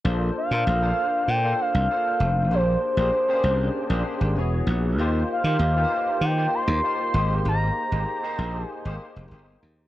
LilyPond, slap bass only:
\new Staff \with { instrumentName = "Slap bass" } { \clef bass \time 4/4 \key bes \major \tempo 4 = 97 bes,,8 r16 bes,16 bes,,8 r8 bes,8 r16 c,16 r8 f,,8 | bes,,8 r16 bes,,16 r8 c,8 r16 bes,,16 r16 aes,,16 e,,8 bes,,8 | ees,8 r16 ees16 ees,8 r8 ees8 r16 ees,16 r8 aes,,8 | aes,,8 r16 aes,,16 r8 bes,,8 r16 aes,,16 r16 f,,16 g,,8 ees,8 | }